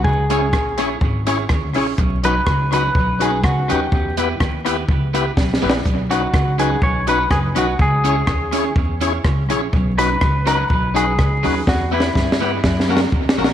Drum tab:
HH |---x-----x-----x-----o--|p--x-----x-----x-----x--|---x-----x-----x--------|p--x-----x-----x-----x--|
SD |------r-----------r-----|------r-----------r-----|------r-----------o-o-o-|------r-----------r-----|
BD |o-----o-----o-----o-----|o-----o-----o-----o-----|o-----o-----o-----o-----|o-----o-----o-----o-----|

HH |---x-----x-----x-----x--|---x-----x-----x-----o--|------------------------|
SD |------r-----------r-----|------r-----------r-----|o---o-o-o---o-o-o---o-o-|
BD |o-----o-----o-----o-----|o-----o-----o-----o-----|o-----o-----o-----o-----|